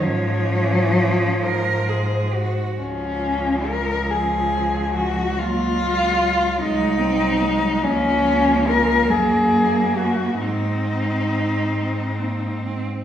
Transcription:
<<
  \new Staff \with { instrumentName = "Cello" } { \time 6/8 \key des \major \tempo 4. = 46 des''4. c''4~ c''16 r16 | des'4 bes'8 aes'4 ges'8 | f'4. ees'4. | des'4 bes'8 aes'4 ges'8 |
ees'2~ ees'8 r8 | }
  \new Staff \with { instrumentName = "Cello" } { \time 6/8 \key des \major des'4. bes'8 aes'8 ges'8 | r4. f4. | bes8 aes8 ges8 aes8 c'8 aes8 | bes2. |
aes4. aes8 bes8 c'8 | }
  \new Staff \with { instrumentName = "Cello" } { \clef bass \time 6/8 \key des \major f2~ f8 r8 | f4. f4. | ges4. ges4. | f4. bes4. |
c'2~ c'8. r16 | }
  \new Staff \with { instrumentName = "Cello" } { \clef bass \time 6/8 \key des \major aes,4. aes,4~ aes,16 r16 | des,2.~ | des,4. c,4. | des,4. ges,4. |
aes,2~ aes,8. r16 | }
>>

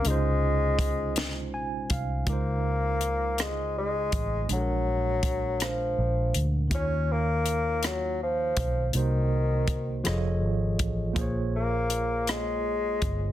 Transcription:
<<
  \new Staff \with { instrumentName = "Tine electric piano" } { \time 6/8 \key des \major \tempo 4. = 54 << { r2 aes''8 f''8 | r2. | r2. | r2. |
r2. | r2. | } \\ { <aes des' ees' f' c''>2. | <des aes ees' f' c''>2. | <bes, aes d' a' bes' ges''>2. | <ees bes ees' f' des''>2. |
<c bes ees' ges' c''>4. <f f' gis' a' cis'' ees''>4. | <bes f' aes' c'' des''>2. | } >> }
  \new Staff \with { instrumentName = "Bassoon" } { \clef bass \time 6/8 \key des \major aes2 r4 | bes4. aes8 aes4 | ges4. f4 r8 | des'8 bes4 ges8 f4 |
ees4. r4. | r8 bes4 aes4. | }
  \new Staff \with { instrumentName = "Fingered electric bass" } { \clef bass \time 6/8 \key des \major des,2 bes,,8 c,8 | des,2~ des,8 a,,8 | bes,,2 bes,,8 d,8 | ees,2~ ees,8 ces,8 |
c,4. f,,8 gis,,8 a,,8 | bes,,2~ bes,,8 g,,8 | }
  \new DrumStaff \with { instrumentName = "Drums" } \drummode { \time 6/8 hh4 <hh bd>8 <hh sn>4 <hh bd>8 | <hh bd>4 hh8 <hh ss>4 <hh bd>8 | hh4 <hh bd>8 <hh ss>4 hh8 | <hh bd>4 hh8 <hh ss>4 <hh bd>8 |
hh4 <hh bd>8 <hh ss>4 <hh bd>8 | <hh bd>4 hh8 <hh ss>4 <hh bd>8 | }
>>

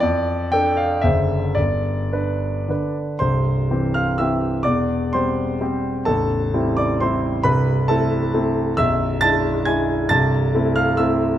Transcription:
\new Staff \with { instrumentName = "Grand piano" } { \time 3/4 \key c \major \tempo 4 = 130 << { d''4 g''8 f''8 e''4 | d''2~ d''8 r8 | <c'' c'''>4. <f'' f'''>8 <e'' e'''>4 | <d'' d'''>4 <c'' c'''>2 |
<a' a''>4. <d'' d'''>8 <c'' c'''>4 | <b' b''>4 <a' a''>2 | \key a \minor <e'' e'''>4 <a'' a'''>4 <gis'' gis'''>4 | <a'' a'''>4. <f'' f'''>8 <e'' e'''>4 | } \\ { f,4 <d' a'>4 <fis,, d d' c''>4 | g,,4 <d' b'>4 <d d' b'>4 | <c,, c,>4 <e c' g'>4 <e c' g'>4 | <e,, e,>4 <g c' g'>4 <g c' g'>4 |
<a,,, a,,>4 <g c' e'>4 <g c' e'>4 | <c,, c,>4 <a c' e'>4 <a c' e'>4 | <b,,, b,,>4 <gis d' e'>4 <gis d' e'>4 | <c,, c,>4 <a c' e'>4 <a c' e'>4 | } >> }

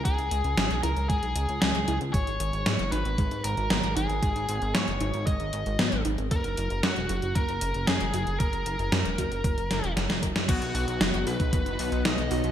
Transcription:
<<
  \new Staff \with { instrumentName = "Lead electric guitar" } { \time 4/4 \key b \major \tempo 4 = 115 gis'4. ais'8 gis'4 gis'8. r16 | cis''4. b'4 ais'4 gis'8~ | gis'4 cis''4 dis''4. r8 | ais'4 fis'4 ais'4 gis'4 |
ais'2. r4 | fis'8 fis'4 b'4. dis''4 | }
  \new Staff \with { instrumentName = "Analog synth pad" } { \time 4/4 \key b \major r1 | r1 | r1 | r1 |
r1 | <b dis' fis'>1 | }
  \new Staff \with { instrumentName = "Synth arpeggio sound" } { \time 4/4 \key b \major gis8 r8 cis'8 e'8 gis8 r8 cis'8 e'8 | gis8 r8 b8 dis'8 gis8 r8 b8 dis'8 | gis8 r8 b8 dis'8 gis8 r8 b8 dis'8 | ais8 r8 cis'8 fis'8 ais8 r8 cis'8 fis'8 |
ais8 r8 cis'8 fis'8 ais8 r8 fis''8 ais'8 | b8 r8 dis'8 fis'8 b8 r8 dis'8 fis'8 | }
  \new Staff \with { instrumentName = "Analog synth bass" } { \clef bass \time 4/4 \key b \major cis,16 cis,16 cis,16 cis,16 gis,,16 b,,16 cis,16 cis,16 gis,,16 b,,16 cis,16 cis,16 cis,16 cis,16 cis,16 cis,16 | gis,,16 gis,,16 gis,,16 gis,,16 gis,16 fis,,16 gis,,16 gis,,16 gis,,16 gis,,16 gis,,16 gis,,16 gis,,16 gis,,16 gis,,16 gis,,16 | gis,,16 gis,,16 gis,,16 gis,,16 gis,16 fis,,16 gis,,16 gis,,16 gis,,16 gis,,16 gis,,16 gis,,16 gis,,16 gis,,16 gis,,16 gis,,16 | fis,,16 fis,,16 fis,,16 fis,,16 fis,16 e,,16 fis,,16 fis,,16 fis,,16 fis,,16 fis,,16 fis,,16 fis,,16 fis,,16 fis,,16 fis,,16 |
fis,,16 fis,,16 fis,,16 fis,,16 fis,16 e,,16 fis,,16 fis,,16 fis,,16 fis,,16 fis,,16 e,,16 fis,,16 fis,,16 fis,,16 fis,,16 | b,,16 b,,16 b,,16 b,,16 fis,,16 fis,,16 b,,16 b,,16 fis,,16 fis,,16 b,,16 b,,16 b,,16 b,,16 b,,16 b,,16 | }
  \new DrumStaff \with { instrumentName = "Drums" } \drummode { \time 4/4 <hh bd>16 hh16 hh16 hh16 <hh sn>16 hh16 hh16 hh16 <hh bd>16 hh16 hh16 hh16 <hh sn>16 hh16 hh16 hh16 | <hh bd>16 hh16 hh16 hh16 <hh sn>16 hh16 hh16 hh16 <hh bd>16 hh16 hh16 hh16 <hh sn>16 hh16 hh16 hh16 | <hh bd>16 hh16 hh16 hh16 <hh sn>16 hh16 hh16 hh16 <hh bd>16 hh16 hh16 hh16 <hh sn>16 hh16 hh16 hh16 | <hh bd>16 hh16 hh16 hh16 <hh sn>16 hh16 hh16 hh16 <hh bd>16 hh16 hh16 hh16 <hh sn>16 hh16 hh16 hh16 |
<hh bd>16 hh16 hh16 hh16 <hh sn>16 hh16 <hh bd>16 hh16 <hh bd>16 hh16 <hh sn>16 hh16 <hh sn>16 <hh sn>16 <hh bd>16 <hh sn>16 | <cymc hh bd>16 hh16 hho16 hh16 <hh sn>16 hh16 hho16 <hh bd>16 <hh bd>16 hh16 hho16 hh16 <hh sn>16 hh16 hho16 hh16 | }
>>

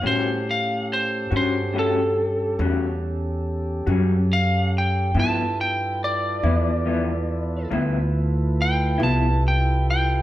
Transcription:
<<
  \new Staff \with { instrumentName = "Lead electric guitar" } { \time 12/8 \key a \dorian \tempo 4. = 47 c''8 f''8 c''8 c''8 a'4 r2 f''8 g''8 | a''8 g''8 d''2 r4 g''8 a''8 g''8 g''8 | }
  \new Staff \with { instrumentName = "Tonewheel organ" } { \time 12/8 \key a \dorian <cis' g' a'>1. | <e' f' a' b'>1. | }
  \new Staff \with { instrumentName = "Clean electric guitar" } { \time 12/8 \key a \dorian <a, g cis' fis'>8 r4 <g cis' fis'>8 <a, g cis' fis'>8 r8 <a, g cis' fis'>8 r4 <g cis' fis'>8 r4 | <g, f b e'>8 r4 <f b e'>8 <g, f b e'>8 r8 <g, f b e'>8 r4 <f b e'>8 r4 | }
  \new Staff \with { instrumentName = "Upright bass" } { \clef bass \time 12/8 \key a \dorian a,4. g,4. e,4. fis,4. | g,4. e,4. d,4. c,4. | }
>>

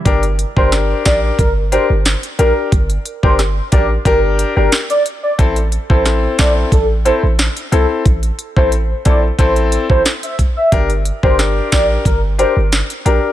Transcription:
<<
  \new Staff \with { instrumentName = "Soft synth lead" } { \time 4/4 \key g \dorian \tempo 4 = 90 r8. c''16 r8 d''16 r16 bes'16 r16 c''16 r8. bes'16 r16 | r8. c''16 r8 d''16 r16 bes'16 r8 bes'16 r16 d''16 r16 d''16 | r8. c''16 r8 d''16 r16 a'16 r16 c''16 r8. a'16 r16 | r8. c''16 r8 d''16 r16 c''16 r8 c''16 r16 e''16 r16 e''16 |
r8. c''16 r8 d''16 r16 bes'16 r16 c''16 r8. bes'16 r16 | }
  \new Staff \with { instrumentName = "Grand piano" } { \time 4/4 \key g \dorian <d' g' bes'>16 r8 <d' g' bes'>8. <d' g' bes'>8 r8 <d' g' bes'>16 r8. <d' g' bes'>8 | r8. <d' g' bes'>16 r8 <d' g' bes'>16 r16 <d' g' bes'>8. <d' g' bes'>16 r4 | <c' e' a'>16 r8 <c' e' a'>8. <c' e' a'>8 r8 <c' e' a'>16 r8. <c' e' a'>8 | r8. <c' e' a'>16 r8 <c' e' a'>16 r16 <c' e' a'>8. <c' e' a'>16 r4 |
<d' g' bes'>16 r8 <d' g' bes'>8. <d' g' bes'>8 r8 <d' g' bes'>16 r8. <d' g' bes'>8 | }
  \new Staff \with { instrumentName = "808-style bass" } { \clef bass \time 4/4 \key g \dorian g,,8. g,,8. a,,8 g,,8. g,,8 r16 bes,,16 r16 | g,,8 r16 g,,8. a,,8 g,,8. g,,16 r4 | a,,8. a,,8. bes,,8 a,,8. a,,8 r16 c,16 r16 | a,,8 r16 a,,8. bes,,8 a,,8. a,,16 r4 |
g,,8. g,,8. a,,8 g,,8. g,,8 r16 bes,,16 r16 | }
  \new DrumStaff \with { instrumentName = "Drums" } \drummode { \time 4/4 <hh bd>16 hh16 hh16 bd16 <hh ss sn>8 <hh bd sn>8 <hh bd>8 hh8 <hh sn>16 hh16 hh8 | <hh bd>16 hh16 hh16 bd16 <hh ss sn>8 <hh bd>8 <hh bd>8 hh8 <hh sn>16 hh16 hh8 | <hh bd>16 hh16 hh16 bd16 <hh ss sn>8 <hh bd sn>8 <hh bd>8 hh8 <hh sn>16 hh16 hh8 | <hh bd>16 hh16 hh16 bd16 hh8 <hh bd>8 <hh bd>16 hh16 hh16 bd16 <hh sn>16 hh16 <hh bd>8 |
<hh bd>16 hh16 hh16 bd16 <hh ss sn>8 <hh bd sn>8 <hh bd>8 hh8 <hh sn>16 hh16 hh8 | }
>>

